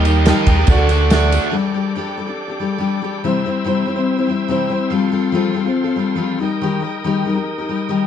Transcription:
Already playing: D#2 D#3 G4 A#4 D#5 G5 D#6
0.05 G3 A#3 D#4 G4 A#4, ride, tambourine
0.25 D#3 G3 A#3 D#4 G4 A#4 D#5 A5, snare, ride, tambourine
0.46 D#2 G3 D#4 G4, kick, ride, tambourine
0.51 A#3 A#4
0.57 G4 A#4
0.61 D#4
0.67 D2 D3 A3 D4 F#4 A4 D5 F#5 D6, kick, ride, tambourine
0.71 A4 D5
0.78 D4 F#4 A4
0.87 A3 D4 F#4 A4, snare, ride, tambourine
0.93 A3
1.10 D3 A3 D4 F#4 A4 D5 E5, snare, ride, tambourine
1.31 A3 D4 F#4 A4, ride, tambourine
1.52 G3 D4 G4 A4 D5 G5 D6
1.74 G3 D4 G4 A4
1.95 G3 D4 G4 A4
2.17 G3 D4 G4 A4
2.27 D4 G4 A4
2.48 D4 G4 A4
2.60 G3 D4 G4 A4
2.78 G3 D4 G4 A4
3.02 G3 D4 G4 A4
3.24 C3 E3 G3 C4 E4 C5 E5 E6
3.45 G3 C4 E4 C5
3.64 C3 E3 G3 C4 E4 C5
3.86 G3 C4 E4 C5
3.96 G3 C4 E4 C5
4.17 G3 C4 E4 C5
4.27 G3 C4 E4 C5
4.48 C3 E3 G3 C4 E4 C5
4.69 G3 C4 E4 C5
4.89 F3 G3 C4 F4 A4 F5 C6
5.09 G3 C4 F4 A4
5.32 F3 G3 C4 F4 A4
5.53 G3 C4 F4 A4
5.63 F4 A4
5.67 C4
5.84 F4 A4
5.88 C4
5.96 G3 C4 F4 A4
6.16 F3 G3 C4 F4 A4
6.39 G3 D#4 G4 A#4 D#5 G5
6.43 D#6
6.62 D#3 G3 D#4 G4 A#4
6.80 G3 D#4 G4 A#4
7.04 D#3 G3 D#4 G4 A#4
7.25 G3 D#4 G4
7.29 A#4
7.35 D#4 G4 A#4
7.58 D#4 G4 A#4
7.69 G3 D#4 G4 A#4
7.89 D#3 G3 D#4 G4 A#4

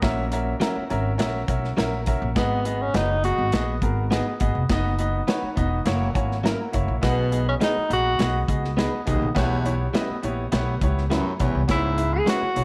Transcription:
0.02 A#1 A#2 C#4 F#4 A#4 E5, kick, snare, closed hi-hat
0.31 C#4 F#4 A#4 E5, closed hi-hat
0.60 F#3 C#4 E4 F#4 A#4 E5, snare, closed hi-hat
0.76 muted upright bass stroke
0.90 G#1 C#4 F#4 A#4 E5, closed hi-hat
1.18 A#1 C#4 F#4 A#4 E5, snare, closed hi-hat
1.48 B1 C#4 F#4 A#4 E5, kick, closed hi-hat
1.64 snare
1.77 A#1 F#3 C#4 E4 F#4 A#4 E5, snare, closed hi-hat
2.06 C#4 F#4 A#4 E5, kick, closed hi-hat
2.22 A#1
2.35 G#1 G#2 B3 F#4 G#4 D#5, kick, snare, closed hi-hat
2.65 B3 F#4 G#4 D#5, closed hi-hat
2.82 C#4
2.93 F#1 B3 D#4 F#4 G#4 B4 C#5, snare, closed hi-hat
3.23 B3 F#4 G#4 D#5, closed hi-hat
3.38 G#1
3.52 A#1 B3 F#4 G#4 D#5, snare, closed hi-hat
3.82 G#1 B3 F#4 G#4 A#4, kick, closed hi-hat
4.11 B3 D#4 F#4 G#4 B4 D#5, snare, closed hi-hat
4.40 G#1 B3 F#4 G#4 D#5, kick, closed hi-hat
4.55 F1
4.69 F#1 B3 D#4 F#4 D#5, kick, snare, closed hi-hat
4.99 B3 D#4 F#4 D#5, closed hi-hat
5.27 B3 D#4 F#4 B4 C#5, snare, closed hi-hat
5.43 muted upright bass stroke
5.56 E1 B3 D#4 F#4 D#5, kick, closed hi-hat
5.85 F#1 A#3 E4 F#4 C#5, snare, closed hi-hat
6.14 G#1 A#3 E4 F#4 C#5 G#5, kick, closed hi-hat
6.32 snare
6.43 F#3 A#3 C#4 E4 F#4 A#4 F#5, snare, closed hi-hat
6.72 F#1 A#3 E4 F#4 C#5 E5, kick, closed hi-hat
6.88 A#1
7.02 B1 B2 B3 F#4 G#4 D#5, kick, snare, closed hi-hat
7.31 B3 F#4 G#4 D#5, closed hi-hat
7.49 C#4
7.60 B3 D#4 F#4 G#4 B4 D#5, snare, closed hi-hat
7.76 muted upright bass stroke
7.89 A#1 B3 F#4 G#4 D#5, closed hi-hat
7.93 F#4
8.18 B1 B3 F#4 G#4 D#5, snare, closed hi-hat
8.48 C#2 B3 F#4 G#4 D#5, kick, closed hi-hat
8.64 snare
8.77 B3 D#4 F#4 G#4 B4 D#5, snare, closed hi-hat
9.06 B1 D#2 B3 F#4 G#4 D#5, kick, closed hi-hat
9.22 A#1
9.35 B1 E2 B2 B3 E4 G4 C#5, kick, snare, closed hi-hat
9.64 B3 E4 G4 C#5, closed hi-hat
9.93 G3 B3 C#4 E4 G4 B4 D#5, snare, closed hi-hat
10.09 muted upright bass stroke
10.23 A#1 B3 E4 G4 C#5, closed hi-hat
10.52 B1 B3 E4 G4 C#5, snare, closed hi-hat
10.81 C#2 B3 E4 G4 C#5, kick, closed hi-hat
10.98 snare
11.10 F#2 G3 B3 C#4 E4 G4 B4 C#5, snare, closed hi-hat
11.40 B1 E2 B3 E4 G4 C#5, kick, closed hi-hat
11.55 C2
11.68 C#2 G#2 C#3 B3 E4 G#4 C#5, kick, snare, closed hi-hat
11.97 B3 E4 G#4 E5, closed hi-hat
12.14 G#4
12.26 G#3 B3 C#4 E4 F#4 G#4 B4 C#5, snare, closed hi-hat
12.42 muted upright bass stroke
12.55 B1 B3 E4 G#4 C#5, closed hi-hat

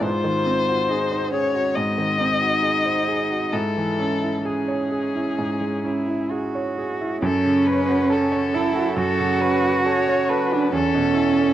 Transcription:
0.01 G#2 F4 C5
0.24 D#3
0.46 C4
0.68 F#4
0.88 D#4 G#4
1.12 C5
1.31 C#4 G#4 C#5
1.54 F#4
1.73 G#2 C4 D#5
1.98 D#3
2.18 C4 D#4
2.42 F#4
2.62 G#4
2.86 C5
3.08 G#4
3.30 F#4
3.53 G#2 E4 A4
3.77 E3
3.99 C#4
4.21 E4
4.45 C#4 G#4
4.68 C#5
4.92 G#4
5.16 E4
5.39 G#2
5.61 G#3
5.84 C#4 E4
6.08 E4
6.31 F#4 G#4
6.55 C#5
6.78 G#4
7.01 E4
7.22 F#2 C#4 A4
7.45 C#3
7.67 C#4 B4
7.89 F#4
8.10 A4
8.32 C#5
8.54 E4 A4
8.75 F#4
8.96 F#2 F#4 A4
9.19 C#3
9.41 C#4 B4
9.65 F#4
9.86 A4 C#5
10.08 C#5
10.29 A4 B4
10.52 D4 F#4
10.73 E2 C#4 A4
10.95 B2
11.15 E4
11.36 A4

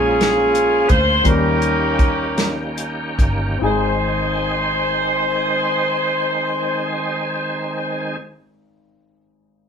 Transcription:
Already playing: A#1 A#2 F3 G#3 A#3 C#4 F4 G#4 A#4
0.21 snare, closed hi-hat
0.55 closed hi-hat
0.88 D2 C5, kick, closed hi-hat
1.23 D#2 D#3 G3 A#3 C#4 D#4 F#4 A#4, kick, closed hi-hat
1.27 D#3 C#4 G4
1.33 G4
1.62 closed hi-hat
1.99 kick, closed hi-hat
2.38 snare, closed hi-hat
2.77 closed hi-hat
3.19 G1, kick, closed hi-hat
3.59 G#1 C4 D#4
3.63 D#3 G#3 C4 G#4 C5

